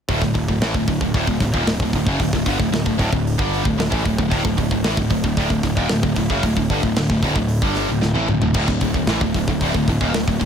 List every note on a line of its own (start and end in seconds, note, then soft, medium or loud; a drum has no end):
0.09 0.21 D1 loud
0.09 0.22 D2 medium
0.09 0.22 A2 loud
0.09 kick loud
0.09 open hi-hat medium
0.21 0.34 D1 medium
0.21 0.33 D2 medium
0.21 0.33 A2 medium
0.21 kick medium
0.21 snare soft
0.34 0.47 D1 medium
0.34 0.48 D2 medium
0.34 0.47 A2 medium
0.34 kick medium
0.34 open hi-hat medium
0.48 0.59 D1 medium
0.48 0.62 D2 medium
0.48 0.61 A2 medium
0.48 kick medium
0.59 0.73 A1 loud
0.59 0.74 A2 medium
0.59 0.75 E3 loud
0.59 snare loud
0.59 open hi-hat medium
0.74 0.87 D1 medium
0.74 0.87 D2 medium
0.74 0.87 A2 medium
0.74 kick medium
0.88 1.00 D1 medium
0.88 1.01 D2 medium
0.88 1.01 A2 medium
0.88 kick medium
0.88 open hi-hat medium
1.01 1.13 D1 medium
1.01 1.14 D2 medium
1.01 1.14 A2 medium
1.01 kick medium
1.14 1.27 D1 medium
1.14 1.27 D2 medium
1.14 1.27 A2 medium
1.14 kick medium
1.14 open hi-hat medium
1.27 1.40 D1 medium
1.27 1.40 D2 medium
1.27 1.41 A2 medium
1.27 kick medium
1.40 1.53 D1 medium
1.40 1.53 D2 medium
1.40 1.54 A2 medium
1.40 kick medium
1.40 snare soft
1.40 open hi-hat medium
1.54 1.65 D#1 medium
1.54 1.66 D#2 medium
1.54 1.67 A#2 loud
1.54 kick medium
1.65 1.79 D1 medium
1.65 1.81 D2 medium
1.65 1.81 A2 medium
1.65 snare loud
1.65 open hi-hat medium
1.80 1.93 D1 medium
1.80 1.94 D2 medium
1.80 1.95 A2 medium
1.80 kick medium
1.93 2.06 D1 medium
1.93 2.07 D2 medium
1.93 2.07 A2 medium
1.93 kick medium
1.93 open hi-hat medium
2.06 2.19 F#1 loud
2.06 2.20 F#2 medium
2.06 2.20 C#3 medium
2.06 kick medium
2.20 2.32 D1 medium
2.20 2.33 D2 medium
2.20 2.33 A2 medium
2.20 kick medium
2.20 open hi-hat medium
2.33 2.45 D1 medium
2.33 2.46 D2 medium
2.33 2.47 A2 medium
2.33 kick loud
2.33 snare soft
2.46 2.59 G1 loud
2.46 2.59 G2 loud
2.46 2.59 D3 loud
2.46 kick medium
2.46 open hi-hat medium
2.59 2.70 D1 medium
2.59 2.71 D2 medium
2.59 2.71 A2 medium
2.59 kick medium
2.71 2.84 D1 medium
2.71 2.84 D2 medium
2.71 2.85 A2 medium
2.71 snare loud
2.71 open hi-hat medium
2.86 2.98 D1 medium
2.86 2.97 D2 medium
2.86 2.98 A2 medium
2.86 kick medium
2.98 3.12 D1 loud
2.98 3.10 D2 medium
2.98 3.11 A2 loud
2.98 kick medium
2.98 open hi-hat medium
3.11 3.37 D1 medium
3.11 3.33 D2 medium
3.11 3.34 A2 medium
3.11 kick medium
3.27 open hi-hat medium
3.38 3.64 G1 medium
3.38 3.64 G2 loud
3.38 3.64 D3 medium
3.38 3.65 G3 medium
3.38 kick loud
3.53 open hi-hat medium
3.64 3.77 D1 medium
3.64 3.77 D2 medium
3.64 3.78 A2 medium
3.64 kick medium
3.77 3.90 D1 medium
3.77 3.90 D2 medium
3.77 3.89 A2 medium
3.77 snare loud
3.77 open hi-hat medium
3.90 4.04 A1 loud
3.90 4.04 A2 loud
3.90 4.04 E3 loud
3.90 kick loud
4.04 4.18 D1 medium
4.04 4.18 D2 medium
4.04 4.18 A2 medium
4.04 kick medium
4.04 open hi-hat medium
4.18 4.31 D1 medium
4.18 4.29 D2 medium
4.18 4.30 A2 medium
4.18 kick medium
4.30 4.44 D1 loud
4.30 4.43 D2 loud
4.30 4.43 A2 loud
4.30 kick loud
4.30 open hi-hat medium
4.44 4.57 D1 medium
4.44 4.56 D2 medium
4.44 4.56 A2 medium
4.44 kick medium
4.57 4.71 D1 medium
4.57 4.71 D2 medium
4.57 4.71 A2 medium
4.57 kick loud
4.57 open hi-hat medium
4.71 4.82 D1 medium
4.71 4.84 D2 medium
4.71 4.83 A2 medium
4.71 kick medium
4.82 4.96 A1 loud
4.82 4.96 A2 medium
4.82 4.97 E3 loud
4.82 snare loud
4.82 open hi-hat medium
4.97 5.10 D1 medium
4.97 5.09 D2 medium
4.97 5.10 A2 medium
4.97 kick medium
5.10 5.23 D1 medium
5.10 5.23 D2 medium
5.10 5.23 A2 medium
5.10 kick medium
5.10 open hi-hat medium
5.24 5.36 D1 medium
5.24 5.37 D2 medium
5.24 5.37 A2 medium
5.24 kick medium
5.37 5.49 D1 medium
5.37 5.49 D2 medium
5.37 5.49 A2 medium
5.37 kick loud
5.37 open hi-hat medium
5.50 5.63 D1 medium
5.50 5.62 D2 medium
5.50 5.63 A2 medium
5.50 kick medium
5.63 5.76 D1 medium
5.63 5.76 D2 medium
5.63 5.77 A2 medium
5.63 kick medium
5.63 snare soft
5.63 open hi-hat medium
5.77 5.89 D#1 loud
5.77 5.89 D#2 medium
5.77 5.89 A#2 loud
5.77 kick medium
5.89 6.03 D1 medium
5.89 6.02 D2 medium
5.89 6.02 A2 medium
5.89 snare loud
5.89 open hi-hat medium
6.03 6.16 D1 medium
6.03 6.15 D2 medium
6.03 6.16 A2 medium
6.03 kick medium
6.16 6.29 D1 medium
6.16 6.30 D2 medium
6.16 6.30 A2 medium
6.16 kick medium
6.16 open hi-hat medium
6.30 6.42 F#1 medium
6.30 6.42 F#2 loud
6.30 6.43 C#3 medium
6.30 kick medium
6.43 6.56 D1 medium
6.43 6.56 D2 medium
6.43 6.56 A2 medium
6.43 kick loud
6.43 open hi-hat medium
6.57 6.69 D1 medium
6.57 6.70 D2 medium
6.57 6.70 A2 medium
6.57 kick medium
6.70 6.82 G1 medium
6.70 6.82 G2 loud
6.70 6.83 D3 loud
6.70 kick medium
6.70 open hi-hat medium
6.82 6.95 D1 medium
6.82 6.96 D2 medium
6.82 6.96 A2 medium
6.82 kick medium
6.96 7.09 D1 medium
6.96 7.10 D2 medium
6.96 7.10 A2 medium
6.96 snare loud
6.96 open hi-hat medium
7.10 7.22 D1 medium
7.10 7.22 D2 medium
7.10 7.23 A2 medium
7.10 kick medium
7.23 7.35 D1 medium
7.23 7.36 D2 medium
7.23 7.36 A2 loud
7.23 kick medium
7.23 open hi-hat medium
7.35 7.60 D1 medium
7.35 7.58 D2 medium
7.35 7.58 A2 medium
7.35 kick medium
7.49 open hi-hat medium
7.62 7.87 G1 medium
7.62 7.88 G2 medium
7.62 7.88 D3 loud
7.62 7.88 G3 loud
7.62 kick loud
7.75 snare soft
7.75 open hi-hat medium
7.89 8.01 D1 medium
7.89 8.00 D2 medium
7.89 8.00 A2 medium
8.01 8.14 D1 medium
8.01 8.14 D2 medium
8.01 8.13 A2 medium
8.01 snare medium
8.14 8.28 A1 medium
8.14 8.27 A2 medium
8.14 8.27 E3 loud
8.14 high tom medium
8.28 8.41 D1 medium
8.28 8.41 D2 medium
8.28 8.42 A2 medium
8.28 mid tom medium
8.42 8.54 D1 medium
8.42 8.54 D2 medium
8.42 8.55 A2 medium
8.42 floor tom loud
8.54 8.67 D1 medium
8.54 8.67 D2 loud
8.54 8.67 A2 loud
8.54 kick loud
8.54 crash loud
8.68 8.80 D1 medium
8.68 8.81 D2 medium
8.68 8.81 A2 medium
8.68 kick medium
8.68 snare soft
8.81 8.93 D1 medium
8.81 8.94 D2 medium
8.81 8.95 A2 medium
8.81 kick medium
8.81 open hi-hat medium
8.94 9.07 D1 medium
8.94 9.08 D2 medium
8.94 9.07 A2 medium
8.94 kick medium
9.07 9.20 A1 loud
9.07 9.21 A2 loud
9.07 9.21 E3 loud
9.07 snare loud
9.07 open hi-hat medium
9.21 9.33 D1 medium
9.21 9.35 D2 medium
9.21 9.35 A2 medium
9.21 kick medium
9.34 9.47 D1 medium
9.34 9.48 D2 medium
9.34 9.48 A2 medium
9.34 kick medium
9.34 open hi-hat medium
9.48 9.60 D1 medium
9.48 9.61 D2 medium
9.48 9.61 A2 medium
9.48 kick medium
9.61 9.73 D1 medium
9.61 9.74 D2 medium
9.61 9.74 A2 medium
9.61 kick loud
9.61 open hi-hat medium
9.74 9.87 D1 medium
9.74 9.88 D2 medium
9.74 9.88 A2 medium
9.74 kick medium
9.87 10.00 D1 medium
9.87 10.00 D2 medium
9.87 10.01 A2 medium
9.87 kick medium
9.87 open hi-hat medium
10.01 10.13 D#1 loud
10.01 10.13 D#2 medium
10.01 10.13 A#2 loud
10.01 kick medium
10.14 10.27 D1 medium
10.14 10.26 D2 medium
10.14 10.27 A2 medium
10.14 snare loud
10.14 open hi-hat medium
10.27 10.40 D1 medium
10.27 10.38 D2 medium
10.27 10.39 A2 medium
10.27 kick medium
10.39 10.45 D1 medium
10.39 10.45 D2 medium
10.39 10.45 A2 medium
10.39 kick medium
10.39 open hi-hat medium